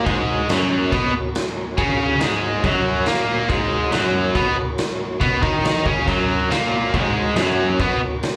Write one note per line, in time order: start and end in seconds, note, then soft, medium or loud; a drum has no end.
0.00 2.60 F#4 medium
0.00 2.60 A#4 medium
0.00 2.41 C#5 medium
0.05 0.48 G#2 medium
0.05 0.48 G#3 medium
0.05 kick loud
0.05 crash medium
0.49 0.92 F#2 medium
0.49 0.92 F#3 medium
0.49 snare loud
0.49 crash medium
0.91 1.12 B2 loud
0.91 1.13 B3 loud
0.91 kick loud
0.91 crash medium
1.35 snare loud
1.35 crash medium
1.56 1.66 A#5 medium
1.68 1.77 G#5 medium
1.76 2.20 C#3 medium
1.76 2.20 C#4 medium
1.76 1.87 F#5 medium
1.76 kick loud
1.76 crash medium
1.88 2.18 F5 medium
2.18 2.62 G#2 medium
2.18 2.63 G#3 medium
2.18 2.39 D#5 medium
2.18 snare loud
2.18 crash medium
2.43 2.60 C#5 medium
2.61 3.06 F#2 medium
2.61 6.01 F#4 medium
2.61 6.02 A#4 medium
2.61 6.01 C#5 medium
2.61 kick loud
2.61 crash medium
2.65 3.07 F#3 loud
3.06 3.48 A#2 medium
3.06 3.49 A#3 loud
3.06 snare loud
3.06 crash soft
3.48 3.91 G#2 medium
3.48 3.91 G#3 loud
3.48 kick loud
3.48 crash medium
3.91 4.34 F#2 medium
3.91 4.34 F#3 medium
3.91 snare loud
3.91 crash medium
4.35 4.56 B2 medium
4.35 4.56 B3 loud
4.35 kick loud
4.35 crash medium
4.78 snare loud
4.78 crash medium
5.20 5.41 B2 medium
5.20 5.41 B3 loud
5.20 kick loud
5.20 crash medium
5.42 5.84 D#3 medium
5.42 5.85 D#4 loud
5.42 kick loud
5.65 snare loud
5.65 crash medium
5.86 6.06 C#3 medium
5.86 6.07 C#4 medium
5.86 kick loud
6.05 6.49 F#2 medium
6.05 6.49 F#3 loud
6.05 8.36 F#4 medium
6.05 8.36 A#4 medium
6.05 8.36 C#5 medium
6.05 kick loud
6.05 crash medium
6.50 6.92 A#2 medium
6.50 6.93 A#3 loud
6.50 snare loud
6.50 crash medium
6.94 7.35 G#2 medium
6.94 7.36 G#3 loud
6.94 kick loud
6.94 crash medium
7.36 7.78 F#2 medium
7.36 7.78 F#3 loud
7.36 snare loud
7.36 crash medium
7.80 8.00 B2 medium
7.80 8.00 B3 loud
7.80 kick loud
7.80 crash medium
8.23 snare loud
8.23 crash medium